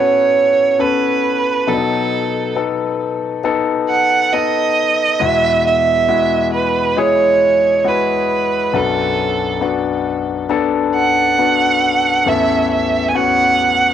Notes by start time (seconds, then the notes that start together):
Already playing: A2 E3 B3 C#4 F#4 A4 C#5
0.79 B3 C#4 A4 B4
1.67 B2 F#3 B3 D4 A4
1.74 D#4
2.56 B3 D#4 A4
3.44 B3 D#4 A4
3.89 F#5
4.33 B3 D#4 A4 D#5
5.20 E2 B2 G#3 E4 F#4 E5
5.66 E5
6.09 G#3 E4 F#4
6.54 B4
6.97 G#3 E4 G#4 C#5
7.85 G#3 E4 F#4 B4
8.73 B1 F#2 B3 D4 F#4 A4
9.61 B3 D4 F#4
10.49 B3 D4 A4
10.96 F#5
11.38 B3 D4 F#4
12.25 A1 E2 B3 C#4 A4 E5
12.71 E5
13.08 G#5
13.14 B3 C#4 F#4 F#5